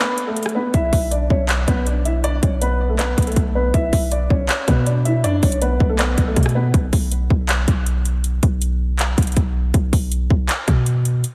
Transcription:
0.00 grand piano B3 B4
0.18 closed hi-hat
0.27 grand piano A3 A4
0.37 closed hi-hat
0.43 cross-stick, closed hi-hat
0.49 closed hi-hat
0.55 grand piano B3 B4
0.74 808-style bass B1, grand piano E4 E5, kick, closed hi-hat
0.93 808-style bass B1, kick, open hi-hat
1.11 grand piano D4 D5, closed hi-hat
1.30 808-style bass B1, grand piano C#4 C#5, kick
1.49 clap, closed hi-hat
1.68 808-style bass B1, grand piano B3 B4, kick, closed hi-hat
1.87 grand piano D4 D5, closed hi-hat
2.05 grand piano E4 E5, closed hi-hat
2.24 grand piano D4 D5, closed hi-hat
2.43 808-style bass B1, grand piano C#4 C#5, kick, closed hi-hat
2.61 grand piano B3 B4, closed hi-hat
2.90 grand piano A3 A4
2.99 grand piano B3 B4, clap, closed hi-hat
3.18 808-style bass B1, kick, closed hi-hat
3.22 closed hi-hat
3.27 grand piano A3 A4, closed hi-hat
3.32 closed hi-hat
3.36 808-style bass B1, kick, closed hi-hat
3.55 grand piano B3 B4
3.74 808-style bass B1, grand piano E4 E5, kick, closed hi-hat
3.93 808-style bass B1, kick, open hi-hat
4.12 grand piano D4 D5, closed hi-hat
4.30 808-style bass B1, grand piano C#4 C#5, kick
4.49 clap, closed hi-hat
4.68 808-style bass B2, grand piano B3 B4, kick, closed hi-hat
4.86 grand piano D4 D5, closed hi-hat
5.05 grand piano E4 E5, closed hi-hat
5.24 808-style bass F#2, grand piano D4 D5, closed hi-hat
5.43 808-style bass B1, grand piano C#4 C#5, kick, closed hi-hat, open hi-hat
5.52 closed hi-hat
5.62 grand piano B3 B4, closed hi-hat
5.80 808-style bass B1, kick
5.89 grand piano A3 A4
5.99 grand piano B3 B4, clap, closed hi-hat
6.18 808-style bass B1, kick, closed hi-hat
6.27 grand piano A3 A4
6.36 808-style bass B2, kick, closed hi-hat
6.43 cross-stick, closed hi-hat
6.49 closed hi-hat
6.55 grand piano B3 B4
6.74 808-style bass B1, kick, closed hi-hat
6.93 808-style bass B1, kick, open hi-hat
7.12 closed hi-hat
7.30 808-style bass B1, kick
7.49 clap, closed hi-hat
7.68 808-style bass B1, kick, closed hi-hat
7.86 closed hi-hat
8.05 closed hi-hat
8.24 closed hi-hat
8.43 808-style bass B1, kick, closed hi-hat
8.62 closed hi-hat
8.99 clap, closed hi-hat
9.18 808-style bass B1, kick, closed hi-hat
9.22 closed hi-hat
9.27 closed hi-hat
9.32 closed hi-hat
9.37 808-style bass B1, kick, closed hi-hat
9.74 808-style bass B1, kick, closed hi-hat
9.93 808-style bass B1, kick, open hi-hat
10.12 closed hi-hat
10.30 808-style bass B1, kick
10.49 clap, closed hi-hat
10.68 808-style bass B2, kick, closed hi-hat
10.86 closed hi-hat
11.05 closed hi-hat
11.24 closed hi-hat

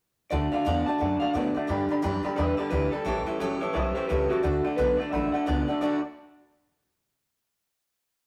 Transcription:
0.30 upright bass D2, steel-string acoustic guitar D3 A3 D4 F#4 D5, clean electric guitar D3 A3 D5, upright piano D5 F#5 A5
0.52 clean electric guitar D3 A3 F5, steel-string acoustic guitar D4 F#4 D5, upright piano D5 F#5 A5
0.65 upright bass E2, steel-string acoustic guitar D3 A3 D4 F#4 D5, clean electric guitar D3 B3, upright piano D5 F#5 A5
0.86 clean electric guitar D3 A3 A5, steel-string acoustic guitar D4 F#4 D5, upright piano D5 F#5 A5, muted upright bass stroke
0.98 upright bass F#2, clean electric guitar D3 A3, steel-string acoustic guitar A3 D4 F#4 D5, upright piano D5 F#5 A5
1.20 clean electric guitar D3 A3 F5, steel-string acoustic guitar D4 F#4 D5, upright piano D5 F#5 A5, muted upright bass stroke
1.33 upright bass A2, steel-string acoustic guitar D3 A3 D4 F#4 D5, clean electric guitar D3 B3 D5, upright piano D5 F#5 A5
1.55 clean electric guitar D3 A3, steel-string acoustic guitar D4 F#4 D5, upright piano D5 F#5 A5, muted upright bass stroke
1.67 clean electric guitar G2 D3, upright bass G2, steel-string acoustic guitar G3 D4 G4 B4, upright piano D5 G5 B5
1.89 clean electric guitar G2 D3, steel-string acoustic guitar D4 G4 B4, upright piano D5 G5 B5, muted upright bass stroke
2.02 upright bass F#2, clean electric guitar G2 E3, steel-string acoustic guitar G3 D4 G4 B4, upright piano D5 G5 B5
2.23 clean electric guitar G2 D3, steel-string acoustic guitar D4 G4 B4, upright piano D5 G5 B5, muted upright bass stroke
2.36 upright bass E2, clean electric guitar G2 D3 B4 E5, steel-string acoustic guitar G3 D4 G4 B4, upright piano D5 G5 B5
2.57 clean electric guitar G2 D3 A4 D5, steel-string acoustic guitar D4 G4 B4, upright piano D5 G5 B5
2.70 upright bass D2, clean electric guitar G2 E3 G4 B4, steel-string acoustic guitar G3 D4 G4 B4, upright piano D5 G5 B5
2.91 clean electric guitar G2 D3 A4, steel-string acoustic guitar D4 G4 B4, upright piano D5 G5 B5
3.05 upright bass A1, steel-string acoustic guitar A2 E3 G3 C#4 G4 A4, clean electric guitar A2 E3, upright piano C#5 E5 A5
3.26 clean electric guitar A2 E3, steel-string acoustic guitar G3 C#4 G4 A4, upright piano C#5 E5 A5
3.39 upright bass G1, clean electric guitar A2 F#3, steel-string acoustic guitar A2 E3 G3 C#4 G4 A4, upright piano C#5 E5 A5
3.60 clean electric guitar A2 E3, steel-string acoustic guitar G3 C#4 G4 A4, upright piano C#5 E5 A5, muted upright bass stroke
3.73 upright bass B1, clean electric guitar A2 E3 C5 E5, steel-string acoustic guitar G3 C#4 G4 A4, upright piano C#5 E5 A5
3.94 clean electric guitar A2 E3 G4 C5, steel-string acoustic guitar G3 C#4 G4 A4, upright piano C#5 E5 G5
4.07 upright bass C#2, clean electric guitar A2 F#3 G4 B4, steel-string acoustic guitar A2 E3 G3 C#4 G4 A4, upright piano C#5 E5 A5
4.29 clean electric guitar A2 E3 F#4, steel-string acoustic guitar G3 C#4 G4 A4, upright piano C#5 E5 A5
4.42 upright bass D2, steel-string acoustic guitar D3 A3 D4 F#4 A4, clean electric guitar D3 A3, upright piano D5 F#5 A5
4.64 clean electric guitar D3 A3, steel-string acoustic guitar D4 F#4 A4, upright piano D5 F#5 A5, muted upright bass stroke
4.76 upright bass B1, steel-string acoustic guitar D3 A3 D4 F#4 A4, clean electric guitar D3 B3 B4, upright piano D5 F#5 A5
4.97 clean electric guitar D3 A3 D5, steel-string acoustic guitar F#4 A4, upright piano D5 F#5 A5
5.02 steel-string acoustic guitar D4
5.11 upright bass A1, clean electric guitar D3 A3 E5, steel-string acoustic guitar A3 D4 F#4 A4, upright piano D5 F#5 B5
5.32 clean electric guitar D3 A3 F#5, steel-string acoustic guitar D4 F#4 A4, upright piano D5 F#5 A5, muted upright bass stroke
5.46 upright bass C#2, steel-string acoustic guitar D3 A3 D4 F#4 A4, clean electric guitar D3 B3 D5, upright piano D5 F#5 A5
5.67 clean electric guitar D3 A3, steel-string acoustic guitar D4 F#4 A4, upright piano D5 F#5 A5
5.81 upright bass D2, steel-string acoustic guitar D3 A3 D4 F#4 A4, clean electric guitar D3 A3 D4 F#4 D5, upright piano D5 F#5 A5

